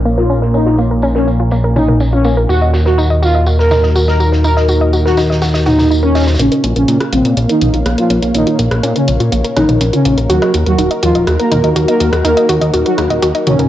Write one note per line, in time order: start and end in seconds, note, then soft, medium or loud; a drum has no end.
0.00 2.47 A#1 medium
0.00 6.44 A#2 medium
0.00 2.45 A#3 medium
0.00 2.45 A#4 medium
0.00 2.45 C#5 medium
0.00 2.45 F5 medium
0.05 0.09 A#3 loud
0.05 tambourine medium
0.18 0.40 F4 medium
0.18 0.27 A#4 medium
0.18 snare soft
0.30 0.33 C#4 loud
0.30 tambourine medium
0.42 0.46 A#4 medium
0.42 snare soft
0.54 0.58 C#4 medium
0.54 0.76 D#4 medium
0.54 tambourine medium
0.66 0.76 F4 medium
0.66 snare soft
0.78 0.82 A#3 loud
0.78 tambourine medium
0.91 1.00 A#4 medium
1.02 1.07 C#4 loud
1.02 tambourine medium
1.15 1.30 C#4 medium
1.15 1.19 A#4 medium
1.15 snare soft
1.27 1.31 C#4 medium
1.27 tambourine medium
1.40 1.49 F4 medium
1.51 1.55 A#3 medium
1.51 tambourine medium
1.64 1.73 A#4 medium
1.76 1.80 C#4 loud
1.76 1.98 D#4 medium
1.76 mid tom medium
1.76 tambourine medium
1.88 1.92 A#4 medium
1.88 mid tom medium
2.00 2.04 C#4 medium
2.00 tambourine medium
2.13 2.35 C#4 medium
2.13 2.22 F4 medium
2.24 2.29 A#3 loud
2.24 tambourine medium
2.37 2.46 A#4 medium
2.49 6.37 D#2 medium
2.49 6.36 D#4 medium
2.49 2.53 F#4 loud
2.49 2.71 F#4 medium
2.49 6.36 F#4 medium
2.49 6.36 A#4 medium
2.49 tambourine medium
2.62 2.65 D#5 medium
2.73 2.77 F#4 medium
2.73 snare soft
2.73 tambourine medium
2.86 3.08 F#4 medium
2.86 2.95 A#4 medium
2.86 snare soft
2.98 3.02 D#4 loud
2.98 tambourine medium
3.10 3.19 D#5 medium
3.22 3.45 F4 medium
3.22 3.26 F#4 medium
3.22 tambourine medium
3.35 3.38 D#5 medium
3.46 3.51 F#4 medium
3.46 tambourine medium
3.59 3.89 A#4 medium
3.59 3.68 A#4 medium
3.59 snare soft
3.71 3.75 D#4 loud
3.71 snare loud
3.71 mid tom medium
3.71 tambourine medium
3.83 3.93 D#5 medium
3.83 snare soft
3.96 3.99 F#4 loud
3.96 tambourine medium
4.08 4.30 A#4 medium
4.08 4.12 D#5 medium
4.08 snare medium
4.20 4.24 F#4 medium
4.20 tambourine medium
4.32 4.41 A#4 medium
4.32 snare soft
4.44 4.48 D#4 loud
4.44 4.66 A#4 medium
4.44 tambourine medium
4.57 4.66 D#5 medium
4.57 snare soft
4.68 4.73 F#4 medium
4.68 tambourine medium
4.81 4.85 D#5 medium
4.93 4.97 F#4 medium
4.93 tambourine medium
5.05 5.20 F#4 medium
5.05 5.15 A#4 medium
5.05 snare soft
5.17 5.21 D#4 medium
5.17 snare medium
5.17 tambourine medium
5.30 5.39 D#5 medium
5.30 snare medium
5.42 5.46 F#4 medium
5.42 snare loud
5.42 tambourine medium
5.54 5.58 D#5 medium
5.54 snare medium
5.54 tambourine medium
5.66 5.88 D#4 medium
5.66 5.76 F#4 loud
5.66 snare medium
5.66 mid tom medium
5.66 tambourine medium
5.79 5.82 D#4 medium
5.79 snare medium
5.79 mid tom medium
5.79 tambourine medium
5.91 6.00 D#4 medium
5.91 tambourine medium
6.03 6.25 C#4 medium
6.03 6.09 A#4 medium
6.15 6.21 D#5 medium
6.15 snare medium
6.15 tambourine medium
6.21 snare medium
6.21 tambourine medium
6.27 6.33 C5 medium
6.27 snare medium
6.27 tambourine medium
6.34 snare medium
6.34 tambourine medium
6.39 6.49 A#1 medium
6.39 6.62 C#3 medium
6.39 6.43 A#3 loud
6.39 10.26 A#3 medium
6.39 6.62 C#4 medium
6.39 13.69 A#4 medium
6.39 10.26 C#5 medium
6.39 10.26 F5 medium
6.39 closed hi-hat medium
6.52 6.61 A#4 medium
6.52 closed hi-hat soft
6.64 6.74 A#1 medium
6.64 6.68 C#4 loud
6.64 closed hi-hat medium
6.76 6.86 A#1 medium
6.76 6.98 C#3 medium
6.76 6.98 C#4 medium
6.76 6.80 A#4 medium
6.76 closed hi-hat soft
6.88 6.98 A#2 loud
6.88 6.92 C#4 medium
6.88 closed hi-hat medium
7.00 7.10 F4 medium
7.00 cross-stick soft
7.00 closed hi-hat soft
7.13 7.23 A#1 medium
7.13 7.35 C3 medium
7.13 7.16 A#3 medium
7.13 7.35 C4 loud
7.13 closed hi-hat medium
7.25 7.35 A#2 medium
7.25 7.34 A#4 medium
7.25 closed hi-hat soft
7.37 7.47 A#1 medium
7.37 7.41 C#4 medium
7.37 closed hi-hat medium
7.49 7.79 D#3 medium
7.49 7.79 D#4 medium
7.49 7.53 A#4 medium
7.49 closed hi-hat soft
7.61 7.71 A#1 medium
7.61 7.65 C#4 medium
7.61 closed hi-hat medium
7.61 mid tom medium
7.74 7.83 A#1 medium
7.74 7.83 F4 medium
7.74 closed hi-hat soft
7.86 7.96 A#1 loud
7.86 7.90 A#3 loud
7.86 cross-stick soft
7.86 closed hi-hat medium
7.98 8.20 F3 medium
7.98 8.20 F4 medium
7.98 8.07 A#4 medium
7.98 closed hi-hat soft
8.10 8.20 A#1 medium
8.10 8.14 C#4 medium
8.10 closed hi-hat medium
8.23 8.32 A#1 medium
8.23 8.26 A#4 medium
8.23 closed hi-hat soft
8.35 8.44 A#1 loud
8.35 8.57 D#3 medium
8.35 8.38 C#4 medium
8.35 8.57 D#4 medium
8.35 closed hi-hat medium
8.47 8.56 F4 medium
8.47 closed hi-hat soft
8.59 8.69 A#1 medium
8.59 8.63 A#3 loud
8.59 closed hi-hat loud
8.71 8.81 A#1 medium
8.71 8.80 A#4 medium
8.71 cross-stick soft
8.71 closed hi-hat soft
8.83 8.93 A#2 loud
8.83 8.87 C#4 loud
8.83 closed hi-hat medium
8.96 9.10 C#3 medium
8.96 9.10 C#4 medium
8.96 8.99 A#4 medium
8.96 closed hi-hat soft
9.08 9.18 A#1 medium
9.08 9.12 C#4 medium
9.08 closed hi-hat loud
9.20 9.30 A#2 medium
9.20 9.29 F4 medium
9.20 closed hi-hat soft
9.32 9.42 A#1 loud
9.32 9.36 A#3 medium
9.32 closed hi-hat medium
9.44 9.54 A#4 medium
9.44 closed hi-hat soft
9.56 9.66 A#1 medium
9.56 9.79 D#3 medium
9.56 9.60 C#4 loud
9.56 9.79 D#4 medium
9.56 cross-stick soft
9.56 closed hi-hat loud
9.56 mid tom medium
9.69 9.79 A#1 medium
9.69 9.72 A#4 medium
9.69 closed hi-hat medium
9.69 mid tom medium
9.81 9.91 A#1 loud
9.81 9.85 C#4 medium
9.81 closed hi-hat medium
9.93 10.15 C#3 medium
9.93 10.15 C#4 medium
9.93 10.02 F4 medium
9.93 closed hi-hat soft
10.05 10.15 A#1 medium
10.05 10.09 A#3 loud
10.05 closed hi-hat medium
10.18 10.27 A#1 medium
10.18 10.27 A#4 medium
10.18 closed hi-hat soft
10.29 10.39 D#2 loud
10.29 10.52 F#3 medium
10.29 13.69 D#4 medium
10.29 10.33 F#4 loud
10.29 10.52 F#4 loud
10.29 13.69 F#4 medium
10.29 closed hi-hat medium
10.42 10.46 D#5 medium
10.42 cross-stick soft
10.42 closed hi-hat soft
10.54 10.64 D#2 medium
10.54 10.58 F#4 medium
10.54 closed hi-hat loud
10.66 10.76 D#2 medium
10.66 10.89 F#3 medium
10.66 10.89 F#4 medium
10.66 10.75 A#4 medium
10.66 closed hi-hat soft
10.78 10.88 D#1 loud
10.78 10.82 D#4 loud
10.78 closed hi-hat medium
10.91 11.00 D#5 medium
10.91 closed hi-hat soft
11.03 11.13 D#2 medium
11.03 11.25 F3 medium
11.03 11.25 F4 medium
11.03 11.07 F#4 loud
11.03 closed hi-hat loud
11.15 11.25 D#1 medium
11.15 11.19 D#5 medium
11.15 closed hi-hat soft
11.27 11.37 D#2 loud
11.27 11.31 F#4 medium
11.27 cross-stick medium
11.27 closed hi-hat medium
11.40 11.69 A#3 medium
11.40 11.49 A#4 medium
11.40 11.69 A#4 loud
11.40 closed hi-hat soft
11.51 11.61 D#2 medium
11.51 11.55 D#4 loud
11.51 closed hi-hat loud
11.51 mid tom medium
11.64 11.74 D#2 medium
11.64 11.73 D#5 medium
11.64 closed hi-hat soft
11.76 11.86 D#2 loud
11.76 11.80 F#4 loud
11.76 closed hi-hat medium
11.88 12.11 A#3 medium
11.88 12.11 A#4 medium
11.88 11.92 D#5 medium
11.88 closed hi-hat soft
12.00 12.10 D#2 medium
12.00 12.04 F#4 medium
12.00 closed hi-hat loud
12.13 12.22 D#2 medium
12.13 12.22 A#4 medium
12.13 cross-stick medium
12.13 closed hi-hat soft
12.25 12.35 D#2 medium
12.25 12.47 A#3 medium
12.25 12.28 D#4 loud
12.25 12.47 A#4 medium
12.25 closed hi-hat medium
12.37 12.46 D#5 medium
12.37 closed hi-hat soft
12.49 12.59 D#2 medium
12.49 12.53 F#4 loud
12.49 closed hi-hat loud
12.62 12.71 D#2 medium
12.62 12.65 D#5 medium
12.62 closed hi-hat soft
12.74 12.83 D#1 loud
12.74 12.77 F#4 medium
12.74 closed hi-hat medium
12.86 13.01 F#3 medium
12.86 13.01 F#4 medium
12.86 12.95 A#4 medium
12.86 closed hi-hat soft
12.98 13.08 D#2 medium
12.98 13.02 D#4 medium
12.98 cross-stick medium
12.98 closed hi-hat loud
13.10 13.20 D#1 medium
13.10 13.19 D#5 medium
13.10 closed hi-hat soft
13.22 13.32 D#2 loud
13.22 13.26 F#4 loud
13.22 closed hi-hat medium
13.35 13.38 D#5 medium
13.35 closed hi-hat soft
13.47 13.57 D#2 medium
13.47 13.69 C#3 medium
13.47 13.69 C#4 medium
13.47 13.51 F#4 medium
13.47 closed hi-hat loud
13.47 mid tom medium
13.59 13.69 D#1 medium
13.59 13.68 A#4 medium
13.59 closed hi-hat medium
13.59 mid tom medium